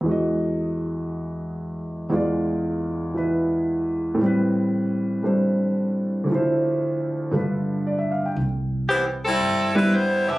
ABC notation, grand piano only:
X:1
M:4/4
L:1/16
Q:"Swing" 1/4=115
K:Ephr
V:1 name="Grand piano"
z16 | z16 | z16 | z12 d e f g |
z16 |]
V:2 name="Grand piano"
[E,,E,^G,^F^d]16 | [E,,E,^G,Fd]8 [E,EB]8 | [A,,E,G,CB]8 [G,A,Dc]8 | [D,,D,F,Ec]8 [G,,D,A,FB]8 |
z8 z2 [G,B,DE]2 z4 |]